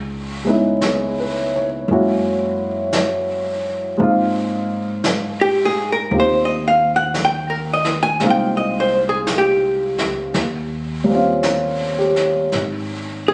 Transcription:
Already playing: C#2 G#4
0.44 G#3 B3 C#4
0.49 D#4 E4
0.81 G#4, brush sweep, snare, hi-hat pedal
1.20 B4
1.56 C#5
1.87 F#2, brush sweep
1.91 G#3 A#3 C#4 E4 F#4
2.93 brush sweep, snare, hi-hat pedal
3.97 G#2 G#3 A#3 C4 D#4, brush sweep
4.02 F4
5.04 brush sweep, snare, hi-hat pedal
5.41 G4
5.65 G#4
5.92 A#4
6.09 D#2 C4 D#4, brush sweep
6.13 F4 G4
6.20 C5
6.45 D#5
6.68 F5
6.96 F#5
7.14 brush sweep, snare, hi-hat pedal
7.25 G5
7.50 A#4
7.73 D#5
7.85 snare
8.03 G#5
8.20 C2 G#3 A#3 C4, brush sweep, snare
8.24 D#4 F4
8.30 G5
8.57 D#5
8.80 C5
9.09 G#4
9.27 brush sweep, snare, hi-hat pedal
9.38 G4
9.98 C#2, snare
10.34 D#2, brush sweep, snare
11.04 G3 A#3
11.09 C4 C#4
11.14 F4
11.43 A#4, brush sweep, snare, hi-hat pedal
11.98 G4
12.16 snare
12.52 G#1, brush sweep, snare
13.28 G#4

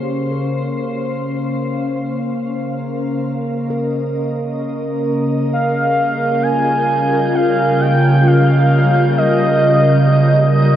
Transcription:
Already playing: C#3 A#3 C#4 C5 F5
0.03 G4
0.31 A#4
2.29 A#4
3.53 D#5
3.70 A#4
5.52 C#3 G3 F5 G6
6.34 F4
6.43 G#5
7.35 F5
7.81 G5
8.27 F5
9.18 D#5
9.43 C#4
10.11 D#5
10.52 G4

